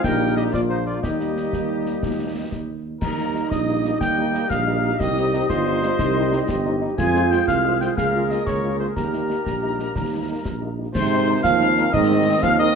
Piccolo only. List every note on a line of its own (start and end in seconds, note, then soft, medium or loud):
3.01 3.51 A#5 medium
3.50 3.99 D#6 medium
4.00 4.51 G6 medium
4.50 5.00 F6 medium
5.00 5.46 D#6 medium
5.49 6.77 C6 medium
6.98 7.29 G#6 medium
7.31 7.46 G6 medium
7.47 7.82 F6 medium
7.81 7.96 G6 medium
7.96 8.32 F6 medium
8.30 8.48 D#6 medium
8.47 8.79 C#6 medium
8.79 8.85 C6 medium
8.96 10.74 A#5 medium
10.95 11.41 C6 loud
11.44 11.95 F6 loud
11.94 12.44 D#6 medium
12.43 12.58 F6 loud
12.59 12.75 D#6 loud